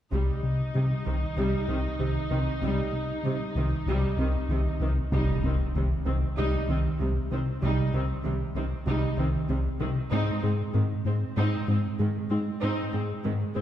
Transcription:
0.12 C2 C3 G3 D#4
0.43 C3
0.75 C3 G3
1.06 C2 C3 D#3
1.37 C2 C3 G3
1.68 C2 C3 D#3 C4
1.99 C2 C3 D#3
2.31 C2 C3 D#3 C4
2.62 C2 C3 G3
2.93 C3
3.23 C3 G3
3.55 C2 C3 D#3
3.86 C2 C3 G3
4.18 C2 C3 D#3 C4
4.49 C2 C3 D#3
4.80 C2 C3 D#3 C4
5.12 C2 C3 G3 D#4, impact
5.44 C2 C3 D#3 C4
5.75 C2 C3 D#3 G3
6.06 C2 C3 D#3 C4
6.37 C2 C3 G3 D#4
6.68 C2 C3 D#3 C4
6.99 C2 C3 G3 C4
7.31 C3 D#3 G3 C4
7.62 C2 C3 G3 D#4
7.94 C2 C3 D#3 C4
8.24 C2 C3 D#3 G3
8.55 C2 C3 D#3 C4
8.86 C2 C3 G3 D#4
9.17 C2 C3 D#3 C4
9.49 C2 C3 G3 C4
9.80 C3 D#3 G3 C4
10.12 G#2 G#3 C4 D#4
10.43 G#2 G#3 C4 G#4
10.74 G#2 D#3 G#3 C4
11.05 G#2 G#3 C4
11.37 G#2 G#3 C4 D#4
11.68 G#2 G#3 C4
11.99 G#2 D#3 G#3 G#4
12.30 G#2 G#3 C4 D#4
12.62 G#2 G#3 C4 D#4
12.93 G#2 G#3 C4 G#4
13.24 G#2 D#3 G#3 C4
13.55 G#2 G#3 C4

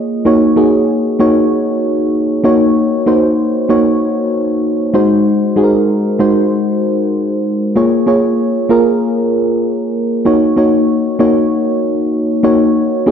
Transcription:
Already playing: A#3 F4 G#4 C#5 D#5
0.25 A#3 D#4 F#4 C#5
0.56 A#3 D#4 F#4 G#4
1.19 A#3 D#4 F#4 C#5
2.44 A#3 D#4 F#4 C#5
3.06 A#3 D#4 F#4 C5
3.69 A#3 D#4 F#4 C#5
4.94 G#3 D#4 F#4 C5
5.56 G#3 D#4 F#4 G#4
5.64 A#4
6.19 G#3 D#4 F#4 C5
7.76 A#3 F4 G#4 C#5
8.06 A#3 F4 G#4 C#5
8.69 A#3 F4 G#4 A#4
10.25 A#3 D#4 F#4 C#5
10.56 A#3 D#4 F#4 C#5
11.19 A#3 D#4 F#4 C#5
12.43 A#3 D#4 F#4 C#5
13.06 A#3 D#4 F#4 G#4

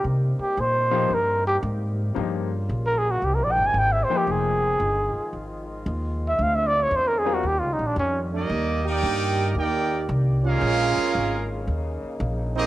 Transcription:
Already playing: G3
0.03 C3 A#3 D#4
0.39 G4, muted upright bass stroke
0.57 A#2 C5
0.91 F3 A#3 D#4 G4
1.10 G2 A#4
1.47 G4
1.63 G#2
2.15 G2 C#3 F3 A#3 D#4 F4 G4
2.69 A#1
2.86 A#4
2.98 G#4
3.11 F#4
3.21 C2 C3 G#3 E4 G4
3.34 A#4
3.40 A#1 D5
3.51 G5
3.57 G1
3.66 G#5
3.74 G#1
3.78 G5
3.92 E5
4.04 C5
4.10 F3 A#3 D#4 G5, muted upright bass stroke
4.17 G4
4.27 F1 D#3 F3 G#3 F4
4.31 G#4
4.80 G1
5.16 muted upright bass stroke
5.33 G#1
5.86 D#2
6.28 E5
6.37 D2 D3 C4
6.42 F5
6.55 E5
6.67 D5
6.82 C#5
6.91 E2
6.96 C5
7.07 A#4
7.18 G#4
7.25 G3 C4 F4 A#4
7.34 F#4
7.41 D#2 D#3 G3 C#4
7.47 G4
7.59 C#2 F4
7.73 D#4
7.79 A#1
7.86 D4
7.96 F2 C#4
8.31 G3 A#3 D#4 D5
8.35 G4 D#5
8.49 D#2 D#3 A#3 G4 D5
8.84 A#3 D#4 G4 A#4 D5 G5
9.03 G2
9.55 D#2 A#3 D#4 G4 A#4 D5 G5
9.59 D#4
10.09 C2
10.43 G#3 C#4 F4 G#4 A#4 F5
10.47 C#4
10.61 A#1 C#3 G#3 A#3 F4
10.97 muted upright bass stroke
11.15 G#1
11.67 D#2 A#3 D#4
12.03 muted upright bass stroke
12.20 A#1
12.54 A#3 C4 D#4 G4 G#4 D#5

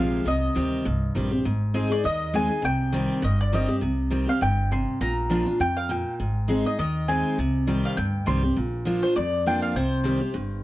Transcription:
Already playing: A#1 C3 F3 G#3 C4 G4 F5
0.25 C2 C3 D#5
0.55 D2 D#3 G3 C4 G4
0.85 C2 G2
1.15 A#1 D#3 G3 C4 G4
1.31 C4 G4
1.45 G#1 G#2
1.74 G#3 C4 D#4 G#4
1.90 D#4 G#4 D5
2.04 D#2 D#3 D#5
2.33 G#3 C4 D#4 G#4 G#5
2.49 D#4 G#4
2.62 C2 C3 G5
2.92 D#3 G3 C4 G4
3.22 G1 G2 D#5
3.41 D5
3.52 D#3 G3 C4 G4 D#5
3.68 C4 G4
3.81 C2 C3
4.11 D#3 G3 C4 G4
4.27 C4 G4 F5
4.41 G1 G2 G5
4.72 C3 C6
5.00 A#1 A#2 A#5
5.30 F3 A#3 D4 F4
5.46 D4 F4
5.60 F2 G5
5.77 F5
5.89 A#2 G5
6.20 G#1 G#2
6.48 G#3 C4 D#4 G#4
6.65 D#4 G#4 D#5
6.79 D#2 D#3 D#5
7.08 G#3 C4 D#4 G#4 G#5
7.38 C2 C3
7.67 D#3 G3 C4 G4
7.85 F5
7.97 D2 G2 G5
8.26 C2 D#3 G3 C4 G4 C6
8.43 C4 G4
8.56 A#1 A#2
8.85 F3 A#3 D4 F4
9.02 D4 F4 C5
9.16 F2 D5
9.46 F3 A#3 D4 F4 G5
9.62 F5
9.75 C2 C3 C5
10.04 D#3 G3 C4 G4
10.21 C4 G4
10.34 G1 G2

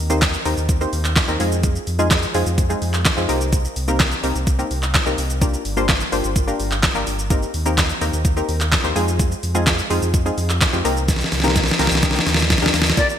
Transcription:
0.00 D#2
0.10 A#3 C4 D#4 G4 C5, shaker
0.22 kick, snare, clap, closed hi-hat, shaker
0.34 shaker
0.45 D#2 A#3 C4 D#4 G4 A#4, open hi-hat, shaker
0.57 D#2, shaker
0.69 kick, closed hi-hat, shaker
0.81 A#3 C4 D#4 G4 C5, shaker
0.93 D#2, open hi-hat, shaker
1.05 clap, shaker
1.16 kick, snare, clap, closed hi-hat, shaker
1.28 D#2 A#3 C4 D#4 G4 A#4, shaker
1.40 F2 G#3 C4 D#4 F4 G#4, open hi-hat, shaker
1.52 shaker
1.63 kick, closed hi-hat, shaker
1.76 shaker
1.87 F2, open hi-hat, shaker
1.99 G#3 C4 D#4 F4 G#4, shaker
2.11 kick, snare, clap, closed hi-hat, shaker
2.23 shaker
2.34 F2 G#3 C4 D#4 F4 G#4, open hi-hat, shaker
2.46 F2, shaker
2.58 kick, closed hi-hat, shaker
2.70 G#3 C4 D#4 F4 G#4, shaker
2.82 F2, open hi-hat, shaker
2.94 clap, shaker
3.05 kick, snare, clap, closed hi-hat, shaker
3.17 F2 G#3 C4 D#4 F4 G#4, shaker
3.29 C2 A#3 C4 D#4 G4 A#4, open hi-hat, shaker
3.41 shaker
3.53 kick, closed hi-hat, shaker
3.65 shaker
3.76 C2, open hi-hat, shaker
3.88 A#3 C4 D#4 G4 A#4, shaker
4.00 kick, snare, clap, closed hi-hat, shaker
4.12 shaker
4.23 C2 A#3 C4 D#4 G4 A#4, open hi-hat, shaker
4.35 C2, shaker
4.47 kick, closed hi-hat, shaker
4.59 A#3 C4 D#4 G4 A#4, shaker
4.71 C2, open hi-hat, shaker
4.83 clap, shaker
4.94 kick, snare, clap, closed hi-hat, shaker
5.06 C2 A#3 C4 D#4 G4 A#4, shaker
5.18 C2, open hi-hat, shaker
5.30 shaker
5.41 A#3 D4 F4 G4 A#4, kick, closed hi-hat, shaker
5.54 shaker
5.65 G1, open hi-hat, shaker
5.77 A#3 D4 F4 G4 C5, shaker
5.89 kick, snare, clap, closed hi-hat, shaker
6.00 shaker
6.12 G1 A#3 D4 F4 G4 C5, open hi-hat, shaker
6.24 G1, shaker
6.36 kick, closed hi-hat, shaker
6.47 A#3 D4 F4 G4 A#4, shaker
6.60 G1, open hi-hat, shaker
6.71 clap, shaker
6.83 kick, snare, clap, closed hi-hat, shaker
6.95 G1 A#3 D4 F4 G4 A#4, shaker
7.07 G1, open hi-hat, shaker
7.19 shaker
7.30 A#3 C4 D#4 G4 A#4, kick, closed hi-hat, shaker
7.43 shaker
7.54 D#2, open hi-hat, shaker
7.66 A#3 C4 D#4 G4 A#4, shaker
7.78 kick, snare, clap, closed hi-hat, shaker
7.90 shaker
8.01 D#2 A#3 C4 D#4 G4 A#4, open hi-hat, shaker
8.13 D#2, shaker
8.25 kick, closed hi-hat, shaker
8.37 A#3 C4 D#4 G4 A#4, shaker
8.49 D#2, open hi-hat, shaker
8.61 clap, shaker
8.72 kick, snare, clap, closed hi-hat, shaker
8.84 D#2 A#3 C4 D#4 G4 C5, shaker
8.95 F2 G#3 C4 D#4 F4 G#4, open hi-hat, shaker
9.08 shaker
9.20 kick, closed hi-hat, shaker
9.32 shaker
9.43 F2, open hi-hat, shaker
9.55 G#3 C4 D#4 F4 G#4, shaker
9.67 kick, snare, clap, closed hi-hat, shaker
9.79 shaker
9.90 F2 G#3 C4 D#4 F4 G#4, open hi-hat, shaker
10.02 F2, shaker
10.14 kick, closed hi-hat, shaker
10.25 G#3 C4 D#4 F4 G#4, shaker
10.38 F2, open hi-hat, shaker
10.50 clap, shaker
10.61 kick, snare, clap, closed hi-hat, shaker
10.73 F2 G#3 C4 D#4 F4 G4, shaker
10.85 C2 A#3 C4 D#4 G4 A#4, open hi-hat, shaker
10.97 shaker
11.08 kick, snare, closed hi-hat, shaker
11.16 snare
11.20 snare, shaker
11.32 C2, snare, open hi-hat, shaker
11.40 A#3 C4 D#4 G4, snare, shaker
11.44 A#4, snare
11.56 kick, snare, closed hi-hat, shaker
11.64 snare, shaker
11.71 snare
11.79 C2 A#3 C4 D#4 G4 A#4, snare, open hi-hat, shaker
11.87 snare, shaker
11.91 C2, snare
12.03 A#3 D4 D#4 G4 A#4, kick, snare, closed hi-hat, shaker
12.11 A#3 D4 D#4, snare
12.15 G4 A#4, snare, shaker
12.27 D#2, snare, open hi-hat, shaker
12.34 snare
12.39 snare, shaker
12.50 kick, snare, closed hi-hat, shaker
12.58 A#3 D4, snare, shaker
12.62 D#2 D#4 G4 A#4, snare
12.74 D#2, snare, open hi-hat, shaker
12.82 snare
12.86 snare, shaker
12.97 A#3 D4 F4 G4 A#4 D5, kick, closed hi-hat, shaker
13.09 shaker

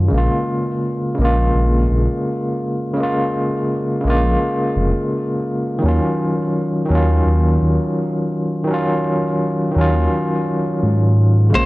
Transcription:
Already playing: D#3 F#3 C#4 F4
0.08 C#3 G#3
0.12 A#1 A#3
0.18 F4
1.15 C#3 G#3
1.19 A#1 A#3
1.25 F4
1.55 A#1
1.91 A#1
2.93 C#3 G#3
3.00 A#3 F4
4.00 C#3 G#3
4.05 A#1 A#3
4.10 F4
4.76 F1
5.78 D#3 F#3
5.84 D#2 C#4
5.88 F4
6.85 D#3 F#3
6.90 D#2 C#4
6.95 F4
7.26 D#2
7.62 D#2
8.64 D#3 F#3
8.70 C#4 F4
9.71 D#3 F#3
9.76 D#2 C#4
9.81 F4
10.83 G#2
11.50 C#3 G#3
11.54 A#1 A#3 C5
11.59 F4

